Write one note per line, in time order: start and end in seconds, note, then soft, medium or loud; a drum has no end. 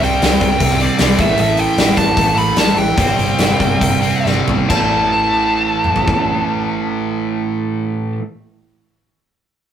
0.00 0.15 C2 medium
0.00 0.79 C3 medium
0.00 0.79 G3 medium
0.00 0.78 C4 loud
0.00 0.81 G5 loud
0.00 open hi-hat medium
0.22 0.35 C2 medium
0.22 snare loud
0.22 open hi-hat medium
0.41 0.54 C2 medium
0.41 kick medium
0.41 open hi-hat soft
0.60 0.86 C2 medium
0.60 kick medium
0.60 open hi-hat medium
0.71 snare soft
0.79 0.97 C3 medium
0.79 0.98 G3 medium
0.79 1.00 C4 medium
0.79 1.21 D5 medium
0.79 open hi-hat medium
0.98 1.13 C2 medium
0.98 1.16 C3 medium
0.98 1.18 G3 medium
0.98 1.19 C4 medium
0.98 snare loud
0.98 open hi-hat medium
1.17 1.32 A1 medium
1.17 2.14 A2 medium
1.17 2.16 E3 medium
1.17 2.16 A3 medium
1.17 1.39 E5 medium
1.17 kick loud
1.17 open hi-hat soft
1.37 1.65 A1 medium
1.37 1.59 E5 medium
1.37 open hi-hat medium
1.57 1.97 G5 loud
1.57 open hi-hat medium
1.77 1.90 A1 medium
1.77 snare loud
1.77 open hi-hat medium
1.97 2.10 A1 medium
1.97 2.38 A5 medium
1.97 kick medium
1.97 open hi-hat medium
2.15 2.30 A1 medium
2.15 2.35 A2 medium
2.15 2.36 E3 medium
2.15 2.34 A3 medium
2.15 kick medium
2.15 open hi-hat medium
2.35 2.50 A1 medium
2.35 2.76 A2 medium
2.35 2.97 E3 medium
2.35 2.75 A3 medium
2.35 2.58 B5 medium
2.35 open hi-hat medium
2.56 2.70 A1 medium
2.56 2.78 A5 loud
2.56 snare loud
2.56 open hi-hat medium
2.77 2.90 A1 medium
2.77 4.26 G5 medium
2.77 open hi-hat soft
2.96 3.11 G1 medium
2.96 4.01 C3 medium
2.96 4.02 G3 medium
2.96 4.01 C4 medium
2.96 kick loud
2.96 open hi-hat medium
3.18 3.32 G1 medium
3.18 open hi-hat medium
3.38 3.53 G1 medium
3.38 snare loud
3.38 open hi-hat medium
3.60 3.74 G1 medium
3.60 kick medium
3.60 open hi-hat medium
3.81 4.10 G1 medium
3.81 kick medium
3.81 open hi-hat medium
4.02 4.22 C3 medium
4.02 4.24 G3 medium
4.02 4.23 C4 medium
4.02 open hi-hat soft
4.24 4.40 G1 medium
4.24 4.68 C3 medium
4.24 4.69 G3 medium
4.24 4.69 C4 medium
4.24 snare medium
4.48 4.62 G#1 medium
4.48 floor tom medium
4.69 8.13 A1 medium
4.69 8.19 A2 medium
4.69 8.21 E3 medium
4.69 8.23 A3 medium
4.69 8.13 A5 medium
4.69 kick medium
4.69 crash medium
5.84 mid tom medium
5.96 floor tom medium
6.08 kick medium